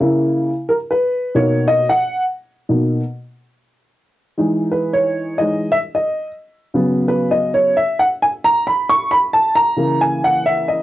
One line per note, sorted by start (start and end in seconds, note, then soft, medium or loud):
0.00 0.49 C#3 medium
0.00 0.49 A#3 medium
0.00 0.49 E4 medium
0.69 0.74 A#4 medium
0.91 1.37 B4 medium
1.35 1.84 B2 medium
1.35 1.84 A#3 medium
1.35 1.85 D#4 medium
1.35 1.70 C#5 medium
1.68 1.91 D#5 loud
1.90 2.22 F#5 medium
2.69 3.00 B2 soft
2.69 3.00 A#3 soft
2.69 3.00 D#4 soft
4.38 5.38 E3 medium
4.38 5.38 G#3 medium
4.38 5.39 D#4 medium
4.72 4.95 B4 medium
4.93 5.40 C#5 medium
5.38 5.70 E3 soft
5.38 5.70 G#3 soft
5.38 5.70 D#4 medium
5.38 5.73 D#5 medium
5.72 5.77 E5 loud
5.95 6.26 D#5 medium
6.74 7.71 C#3 medium
6.74 7.72 F#3 soft
6.74 7.72 B3 medium
7.08 7.31 B4 medium
7.31 7.54 D#5 medium
7.54 7.77 C#5 medium
7.77 7.97 E5 medium
7.99 8.04 F#5 medium
8.22 8.27 G#5 medium
8.44 8.65 A#5 loud
8.67 8.89 B5 medium
8.90 9.12 C#6 loud
9.11 9.16 B5 loud
9.33 9.56 A5 loud
9.55 10.02 A#5 loud
9.76 10.83 C#3 medium
9.76 10.83 E3 medium
9.76 10.83 A#3 medium
10.01 10.24 G#5 medium
10.24 10.47 F#5 medium
10.46 10.69 E5 medium
10.69 10.83 D#5 medium